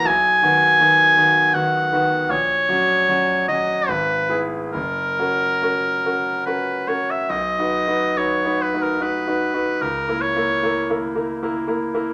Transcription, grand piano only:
\new Staff \with { instrumentName = "Grand piano" } { \time 3/4 \key b \major \tempo 4 = 75 b,,8 <dis b fis'>8 <dis b fis'>8 <dis b fis'>8 <dis b fis'>8 <dis b fis'>8 | ais,,8 <fis cis' fis'>8 <fis cis' fis'>8 <fis cis' fis'>8 gis,,8 <b e' gis'>8 | fis,,8 <cis' fis' ais'>8 <cis' fis' ais'>8 <cis' fis' ais'>8 <cis' fis' ais'>8 <cis' fis' ais'>8 | \tuplet 3/2 { b,,8 <dis' fis' b'>8 <dis' fis' b'>8 <dis' fis' b'>8 <dis' fis' b'>8 <dis' fis' b'>8 <dis' fis' b'>8 <dis' fis' b'>8 <dis' fis' b'>8 } |
\tuplet 3/2 { cis,8 <ais e' ais'>8 <ais e' ais'>8 <ais e' ais'>8 <ais e' ais'>8 <ais e' ais'>8 <ais e' ais'>8 <ais e' ais'>8 <ais e' ais'>8 } | }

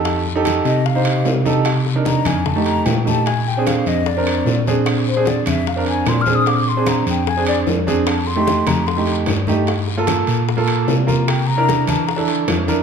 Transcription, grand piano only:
\new Staff \with { instrumentName = "Grand piano" } { \time 4/4 \key f \mixolydian \tempo 4 = 150 <ees' g' a'>8 r16 <ees' g' a'>4 r8 <ees' g' c''>8. r8 <ees' g' a'>8 | r8. <d' ees' bes'>4 r8 <a ees' g'>8. r8 <a ees' g'>8 | r8. <c' d' aes'>4 r8 <c' d' bes'>8. r8 <c' d' aes'>8~ | <c' d' aes'>8 r16 <c' d' aes'>4 r8 <c' d' bes'>8. r8 <c' d' aes'>8~ |
<c' d' aes'>8 r16 <c' d' aes'>4 r8 <c' d' aes'>8. r8 <c' d' aes'>8 | r8. <a ees' g'>4 r8 <a ees' g'>8. r8 <a ees' g'>8 | r8. <bes f' a'>4 r8 <bes f' a'>8. r8 <bes f' bes'>8 | r8. <d' e' bes'>4 r8 <d' e' a'>8. r8 <d' e' bes'>8 | }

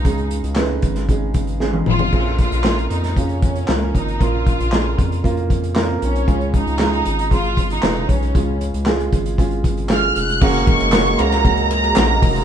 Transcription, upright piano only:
<<
  \new Staff \with { instrumentName = "Upright piano" } { \time 4/4 \key fis \major \tempo 4 = 116 <gis cis' dis' gis'>8. r16 <gis cis' dis' b'>8. r16 <gis cis' dis' gis'>8. r16 <gis cis' dis' gis'>8. r16 | <ais bis cis' eis' gis'>8. r16 <ais cis' eis' ais'>8. r16 <ais cis' eis' gis'>8. r16 <ais cis' eis' ais'>8. r16 | <ais cis' eis' ais'>8. r16 <ais cis' eis' gis'>8. r16 <ais cis' eis' ais'>8. r16 <ais bis cis' eis' ais'>8. r16 | <gis cis' eis' gis'>8. r16 <gis cis' eis' gis'>8. r16 <gis cis' eis' gis'>8. r16 <gis cis' eis' b'>8. r16 |
<gis cis' eis' gis'>8. r16 <gis cis' eis' gis'>8. r16 <gis cis' eis' gis'>8. r16 <gis cis' eis' gis'>8. r16 | <ais cis' fis' gis' ais'>8. r16 <ais cis' fis' gis' cis''>8 <ais cis' fis' gis' ais'>8 <ais cis' fis' gis' cis''>8. r16 <ais cis' fis' gis' ais'>8. r16 | }
  \new Staff \with { instrumentName = "Upright piano" } { \clef bass \time 4/4 \key fis \major cis4. r2 r8 | ais,4. r2 r8 | ais,4. r2 r8 | cis4. r2 r8 |
cis4. r2 r8 | r1 | }
>>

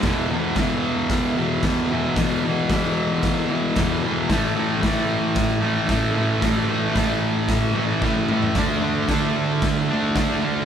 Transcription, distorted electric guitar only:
\new Staff \with { instrumentName = "Distorted electric guitar" } { \clef bass \time 4/4 \key a \major \tempo 4 = 113 <e, b, e>8 <b, e>8 <e, b, e>4. <b, e>8 <e, b, e>8 <b, e>8 | <e, b, e>8 <b, e>8 <e, b, e>4. <b, e>8 <e, b, e>8 <b, e>8 | <a, e a>8 <e a>8 <a, e a>4. <e a>8 <a, e a>8 <e a>8 | <a, e a>8 <e a>8 <a, e a>4. <e a>8 <a, e a>8 <e a>8 |
<d a d'>8 <a d'>8 <d a d'>4. <a d'>8 <d a d'>8 <a d'>8 | }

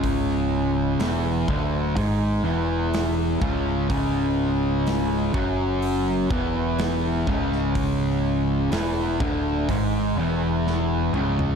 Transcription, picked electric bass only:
\new Staff \with { instrumentName = "Picked electric bass" } { \clef bass \time 4/4 \key cis \minor \tempo 4 = 62 cis,,4 e,,8 d,,8 gis,,8 e,,4 cis,,8 | cis,,4. fis,,4 e,,4 cis,,8~ | cis,,4 e,,8 d,,8 gis,,8 e,,4 cis,,8 | }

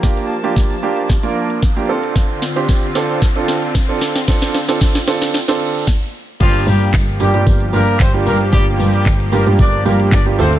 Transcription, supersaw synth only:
\new Staff \with { instrumentName = "Supersaw synth" } { \time 4/4 \key g \minor \tempo 4 = 113 <f bes a''>2.~ <f bes a''>8 <d c' f'>8~ | <d c' f'>1~ | <d c' f'>2. r4 | <f bes g'>1~ |
<f bes g'>2.~ <f bes g'>8 <d c' f'>8 | }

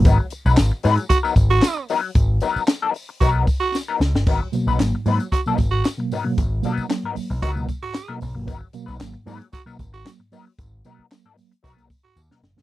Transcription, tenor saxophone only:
\new Staff \with { instrumentName = "Tenor saxophone" } { \time 4/4 \key gis \minor \tempo 4 = 114 r2 fis'16 r8 fis'8. r8 | r2 fis'16 r8 fis'8 r8. | r2 fis'16 r8 fis'8 r8. | r2 fis'16 r8 fis'8. r8 |
r2 fis'16 r8 fis'8 r8. | r2 fis'16 r8 fis'8 r8. | }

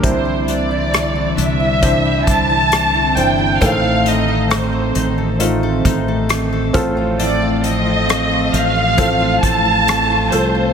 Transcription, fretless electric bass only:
\new Staff \with { instrumentName = "Fretless electric bass" } { \clef bass \time 4/4 \key f \mixolydian \tempo 4 = 67 c,4. c,4 c,4 g,,8 | a,,4. a,,4 a,,4 a,,8~ | a,,4. a,,4 a,,4 c,8 | }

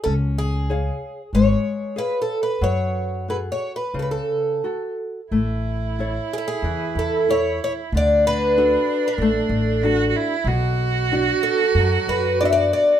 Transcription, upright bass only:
\new Staff \with { instrumentName = "Upright bass" } { \clef bass \time 4/4 \key fis \minor \tempo 4 = 93 cis,2 gis,,8 r4. | fis,2 cis,8 r4. | \key a \major a,,2 e,8 e,4. | d,2 a,,8 a,,4. |
b,,2 fis,8 fis,4. | }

